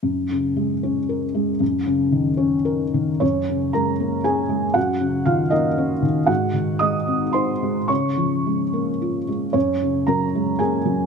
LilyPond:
<<
  \new Staff \with { instrumentName = "Felt piano" } { \time 3/4 \key ges \lydian \tempo 4 = 115 r2. | r2. | <des' des''>4 <bes' bes''>4 <aes' aes''>4 | <ges' ges''>4 <f' f''>8 <ees' ees''>4 r8 |
<ges' ges''>4 <ees'' ees'''>4 <c'' c'''>4 | <des'' des'''>2~ <des'' des'''>8 r8 | <des' des''>4 <bes' bes''>4 <aes' aes''>4 | }
  \new Staff \with { instrumentName = "Felt piano" } { \clef bass \time 3/4 \key ges \lydian ges,8 des8 aes8 des'8 bes'8 aes8 | ges,8 des8 ees8 des'8 bes'8 ees8 | ges,8 des8 aes8 bes8 des'8 aes8 | ges,8 des8 ees8 bes8 des'8 ees8 |
aes,8 ees8 aes8 c'8 ees'8 aes8 | des8 f8 aes8 bes8 f'8 aes8 | ges,8 des8 ges8 aes8 bes8 ges8 | }
>>